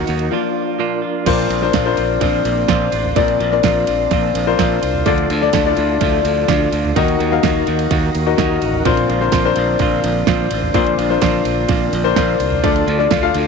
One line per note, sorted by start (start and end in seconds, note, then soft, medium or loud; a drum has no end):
0.00 0.31 D#3 medium
0.00 0.34 F#3 medium
0.00 0.31 A#3 medium
0.00 0.31 D#4 medium
0.00 0.34 D#4 medium
0.00 0.31 F#4 medium
0.00 0.31 A#4 medium
0.00 0.33 A#4 medium
0.07 0.28 D#2 medium
0.07 0.31 A#3 soft
0.07 0.32 D#4 medium
0.07 0.31 F#4 medium
0.07 ride medium
0.19 ride soft
0.31 0.63 F3 medium
0.31 0.79 F3 medium
0.31 0.63 A#3 soft
0.31 1.25 A#3 medium
0.31 0.79 A#3 medium
0.31 1.25 D4 medium
0.31 0.64 D4 medium
0.31 0.80 D4 medium
0.31 1.26 F4 medium
0.31 0.80 F4 medium
0.79 1.03 A#2 medium
0.79 1.03 F3 medium
0.79 1.03 A#3 medium
0.79 1.02 D4 loud
0.79 1.01 F4 loud
1.02 1.27 A#3 soft
1.02 1.26 D4 medium
1.02 1.26 F4 medium
1.26 1.46 A#1 loud
1.26 1.50 A#2 medium
1.26 1.94 A#2 medium
1.26 1.50 F3 medium
1.26 5.02 A#3 medium
1.26 5.02 C4 medium
1.26 1.51 C4 medium
1.26 6.92 D4 medium
1.26 1.52 D4 medium
1.26 1.50 D4 medium
1.26 1.52 F4 medium
1.26 1.48 F4 medium
1.26 1.52 A#4 medium
1.26 1.52 C5 medium
1.26 kick loud
1.26 crash loud
1.26 ride medium
1.38 ride soft
1.49 1.70 A#1 loud
1.49 1.74 C4 soft
1.49 1.74 D4 medium
1.49 1.74 F4 medium
1.49 ride soft
1.62 1.79 D4 medium
1.62 1.79 F4 medium
1.62 1.79 A#4 medium
1.62 1.79 C5 medium
1.62 snare soft
1.73 1.93 A#1 medium
1.73 1.98 A#2 medium
1.73 1.98 F3 medium
1.73 1.98 C4 medium
1.73 1.97 D4 medium
1.73 1.96 F4 medium
1.73 kick loud
1.73 snare loud
1.73 ride medium
1.86 2.53 D4 loud
1.86 2.53 F4 medium
1.86 2.53 A#4 medium
1.86 2.53 C5 loud
1.97 2.17 A#1 medium
1.97 2.20 C4 soft
1.97 2.21 D4 medium
1.97 2.21 F4 medium
1.97 ride medium
2.21 2.41 A#1 loud
2.21 2.68 F3 medium
2.21 2.68 C4 medium
2.21 2.69 D4 medium
2.21 2.69 F4 medium
2.21 kick loud
2.21 ride medium
2.45 2.65 A#1 medium
2.45 ride medium
2.68 2.88 A#1 loud
2.68 2.92 A#2 medium
2.68 2.93 F3 medium
2.68 2.93 C4 medium
2.68 2.92 D4 loud
2.68 2.91 F4 loud
2.68 kick loud
2.68 snare loud
2.68 ride medium
2.92 3.12 A1 medium
2.92 3.15 C4 soft
2.92 3.16 D4 medium
2.92 3.16 F4 medium
2.92 ride medium
3.04 floor tom medium
3.16 3.36 A#1 loud
3.16 3.40 A#2 medium
3.16 3.84 A#2 medium
3.16 3.40 F3 medium
3.16 3.40 C4 medium
3.16 3.42 D4 medium
3.16 3.39 D4 medium
3.16 3.42 F4 medium
3.16 3.38 F4 medium
3.16 3.42 A#4 medium
3.16 3.42 D5 medium
3.16 kick loud
3.16 ride medium
3.28 ride soft
3.39 3.60 A#1 medium
3.39 3.63 C4 soft
3.39 3.64 D4 soft
3.39 3.63 F4 medium
3.39 ride medium
3.52 4.19 D4 medium
3.52 4.19 F4 medium
3.52 4.19 A#4 medium
3.52 4.19 D5 medium
3.52 snare soft
3.63 3.84 A#1 loud
3.63 3.87 A#2 medium
3.63 3.88 F3 medium
3.63 3.88 C4 medium
3.63 3.87 D4 loud
3.63 3.86 F4 loud
3.63 kick loud
3.63 snare loud
3.63 ride medium
3.87 4.07 A#1 medium
3.87 4.10 C4 soft
3.87 4.11 D4 medium
3.87 4.11 F4 medium
3.87 ride medium
4.11 4.31 A#1 loud
4.11 4.58 F3 medium
4.11 4.58 C4 medium
4.11 4.59 D4 medium
4.11 4.60 F4 medium
4.11 kick loud
4.11 ride medium
4.35 4.55 A#1 medium
4.35 ride medium
4.47 4.89 D4 loud
4.47 4.89 F4 medium
4.47 4.89 A#4 medium
4.47 4.89 C5 loud
4.58 4.78 A#1 loud
4.58 4.82 A#2 medium
4.58 4.83 F3 medium
4.58 4.83 C4 medium
4.58 4.82 D4 medium
4.58 4.81 F4 loud
4.58 kick loud
4.58 snare loud
4.58 ride medium
4.82 5.02 C2 medium
4.82 5.07 C4 soft
4.82 5.06 D4 medium
4.82 5.06 F4 medium
4.82 ride medium
4.94 floor tom medium
5.06 5.26 D2 loud
5.06 5.30 D3 medium
5.06 6.94 D3 medium
5.06 5.73 D3 medium
5.06 5.30 F3 loud
5.06 5.30 A3 loud
5.06 5.31 D4 medium
5.06 5.30 D4 medium
5.06 5.31 F4 medium
5.06 6.94 F4 medium
5.06 5.29 F4 loud
5.06 5.31 A4 medium
5.06 6.94 A4 medium
5.06 5.31 D5 loud
5.06 kick loud
5.06 ride medium
5.18 ride soft
5.30 5.49 D2 loud
5.30 5.53 A3 medium
5.30 5.54 D4 medium
5.30 5.54 F4 medium
5.30 ride medium
5.41 5.58 D4 medium
5.41 5.59 F4 medium
5.41 5.59 A4 medium
5.41 5.59 D5 loud
5.41 snare soft
5.53 5.73 D2 loud
5.53 5.77 D3 medium
5.53 5.77 F3 medium
5.53 5.78 A3 medium
5.53 5.77 D4 loud
5.53 5.76 F4 medium
5.53 kick loud
5.53 snare loud
5.53 ride medium
5.65 6.32 D4 loud
5.65 5.71 E4 medium
5.65 6.33 A4 medium
5.65 6.33 D5 loud
5.71 6.35 F4 medium
5.77 5.97 D2 loud
5.77 6.01 A3 medium
5.77 6.01 D4 medium
5.77 6.01 F4 medium
5.77 ride medium
6.01 6.21 D2 loud
6.01 6.47 F3 medium
6.01 6.48 A3 medium
6.01 6.48 D4 medium
6.01 6.49 F4 medium
6.01 kick loud
6.01 ride medium
6.25 6.44 D2 loud
6.25 ride medium
6.48 6.68 D2 loud
6.48 6.72 D3 medium
6.48 6.72 F3 loud
6.48 6.72 A3 loud
6.48 6.72 D4 loud
6.48 6.70 F4 loud
6.48 kick loud
6.48 snare loud
6.48 ride medium
6.71 6.92 D2 medium
6.71 6.96 A3 medium
6.71 6.96 D4 medium
6.71 6.96 F4 medium
6.71 ride medium
6.84 floor tom medium
6.95 7.16 D#2 loud
6.95 7.19 D#3 medium
6.95 7.63 D#3 medium
6.95 8.84 D#3 medium
6.95 7.20 A#3 medium
6.95 7.21 D#4 medium
6.95 8.84 D#4 medium
6.95 7.19 D#4 medium
6.95 7.21 F#4 medium
6.95 8.84 F#4 medium
6.95 7.18 F#4 medium
6.95 7.21 A#4 medium
6.95 8.84 A#4 medium
6.95 7.21 D#5 loud
6.95 kick loud
6.95 ride medium
7.08 ride soft
7.19 7.39 D#2 loud
7.19 7.42 A#3 soft
7.19 7.43 D#4 medium
7.19 7.43 F#4 medium
7.19 ride medium
7.32 7.98 D#4 medium
7.32 7.99 F#4 medium
7.32 7.98 A#4 medium
7.32 7.99 F5 medium
7.32 snare soft
7.43 7.63 D#2 loud
7.43 7.67 D#3 medium
7.43 7.67 A#3 medium
7.43 7.67 D#4 medium
7.43 7.65 F#4 medium
7.43 kick loud
7.43 snare loud
7.43 ride medium
7.66 7.87 D#2 loud
7.66 7.90 A#3 soft
7.66 7.91 D#4 medium
7.66 7.90 F#4 medium
7.66 ride medium
7.79 ride soft
7.90 8.10 D#2 loud
7.90 8.36 D#3 medium
7.90 8.38 A#3 medium
7.90 8.38 D#4 medium
7.90 8.38 F#4 medium
7.90 kick loud
7.90 ride medium
8.15 8.34 D#2 medium
8.15 ride medium
8.26 8.68 D#4 medium
8.26 8.68 F#4 medium
8.26 8.68 A#4 medium
8.26 8.68 D#5 loud
8.38 8.58 D#2 loud
8.38 8.61 D#3 medium
8.38 8.62 A#3 medium
8.38 8.61 D#4 loud
8.38 8.60 F#4 medium
8.38 kick loud
8.38 snare loud
8.38 ride medium
8.50 floor tom medium
8.61 8.81 A1 medium
8.61 8.85 A#3 soft
8.61 8.86 D#4 medium
8.61 8.85 F#4 medium
8.61 ride medium
8.73 floor tom medium
8.85 9.05 A#1 loud
8.85 9.09 A#2 medium
8.85 9.53 A#2 medium
8.85 13.47 D3 medium
8.85 9.09 F3 medium
8.85 12.60 A#3 medium
8.85 9.09 C4 loud
8.85 9.11 D4 medium
8.85 9.08 D4 loud
8.85 9.10 F4 medium
8.85 9.07 F4 medium
8.85 9.11 A#4 medium
8.85 9.11 C5 loud
8.85 kick loud
8.85 ride medium
8.97 ride soft
9.08 9.29 A#1 loud
9.08 9.32 C4 medium
9.08 9.32 D4 medium
9.08 9.32 F4 medium
9.08 ride medium
9.21 9.37 D4 medium
9.21 9.38 F4 medium
9.21 9.38 A#4 medium
9.21 9.38 C5 medium
9.21 snare soft
9.32 9.52 A#1 loud
9.32 9.56 A#2 medium
9.32 9.56 F3 medium
9.32 9.57 C4 medium
9.32 9.56 D4 medium
9.32 9.54 F4 medium
9.32 kick loud
9.32 snare loud
9.32 ride medium
9.45 10.12 D4 loud
9.45 10.12 F4 medium
9.45 10.12 A#4 medium
9.45 10.12 C5 loud
9.56 9.76 A#1 loud
9.56 9.79 C4 soft
9.56 9.80 D4 medium
9.56 9.80 F4 medium
9.56 ride medium
9.79 9.99 A#1 loud
9.79 10.27 F3 medium
9.79 10.27 C4 medium
9.79 10.28 D4 medium
9.79 10.28 F4 medium
9.79 kick loud
9.79 ride medium
10.04 10.23 A#1 medium
10.04 ride medium
10.27 10.47 A#1 loud
10.27 10.51 A#2 medium
10.27 10.51 F3 medium
10.27 10.51 C4 medium
10.27 10.50 D4 loud
10.27 10.49 F4 loud
10.27 kick loud
10.27 snare loud
10.27 ride medium
10.50 10.71 A1 medium
10.50 10.73 C4 soft
10.50 10.74 D4 medium
10.50 10.74 F4 medium
10.50 ride medium
10.62 floor tom medium
10.74 10.94 A#1 loud
10.74 10.98 A#2 medium
10.74 11.41 A#2 medium
10.74 10.98 F3 medium
10.74 10.98 C4 loud
10.74 10.99 D4 medium
10.74 13.47 D4 medium
10.74 10.98 D4 medium
10.74 11.00 F4 medium
10.74 10.96 F4 medium
10.74 11.00 A#4 medium
10.74 11.00 C5 loud
10.74 kick loud
10.74 ride medium
10.86 ride soft
10.98 11.18 A#1 medium
10.98 11.21 C4 soft
10.98 11.21 D4 medium
10.98 11.22 F4 medium
10.98 ride medium
11.10 11.77 D4 medium
11.10 11.77 F4 medium
11.10 11.77 A#4 medium
11.10 11.77 C5 medium
11.10 snare soft
11.21 11.41 A#1 loud
11.21 11.45 A#2 medium
11.21 11.46 F3 medium
11.21 11.46 C4 loud
11.21 11.45 D4 loud
11.21 11.44 F4 medium
11.21 kick loud
11.21 snare loud
11.21 ride medium
11.45 11.65 A#1 medium
11.45 11.68 C4 soft
11.45 11.69 D4 medium
11.45 11.69 F4 medium
11.45 ride medium
11.68 11.89 A#1 medium
11.68 12.16 F3 medium
11.68 12.15 C4 medium
11.68 12.16 D4 medium
11.68 12.17 F4 medium
11.68 kick loud
11.68 ride medium
11.93 12.12 A#1 medium
11.93 ride medium
12.04 12.46 D4 loud
12.04 12.46 F4 medium
12.04 12.46 A#4 medium
12.04 12.46 C5 loud
12.16 12.36 A#1 loud
12.16 12.40 A#2 medium
12.16 12.40 F3 medium
12.16 12.40 C4 loud
12.16 12.39 D4 loud
12.16 12.38 F4 loud
12.16 kick loud
12.16 snare loud
12.16 ride medium
12.39 12.60 C2 medium
12.39 12.64 C4 medium
12.39 12.63 D4 medium
12.39 12.63 F4 medium
12.39 ride medium
12.52 floor tom medium
12.63 12.83 D2 loud
12.63 12.87 D3 medium
12.63 13.31 D3 medium
12.63 12.87 F3 medium
12.63 12.88 A3 medium
12.63 12.89 D4 medium
12.63 12.87 D4 loud
12.63 12.89 F4 medium
12.63 13.47 F4 medium
12.63 12.85 F4 loud
12.63 12.89 A4 medium
12.63 13.47 A4 medium
12.63 12.89 D5 loud
12.63 kick loud
12.63 ride medium
12.76 ride soft
12.87 13.07 D2 loud
12.87 13.10 A3 soft
12.87 13.11 D4 medium
12.87 13.11 F4 medium
12.87 ride soft
12.99 13.16 D4 medium
12.99 13.16 F4 medium
12.99 13.16 A4 medium
12.99 13.16 D5 medium
12.99 snare soft
13.10 13.31 D2 medium
13.10 13.34 D3 medium
13.10 13.35 F3 medium
13.10 13.35 A3 loud
13.10 13.34 D4 loud
13.10 13.33 F4 medium
13.10 kick loud
13.10 snare loud
13.10 ride medium
13.23 13.47 D4 loud
13.23 13.47 F4 loud
13.23 13.47 A4 medium
13.23 13.47 F5 loud
13.34 13.47 D2 loud
13.34 13.47 A3 medium
13.34 13.47 D4 medium
13.34 13.47 F4 medium
13.34 ride medium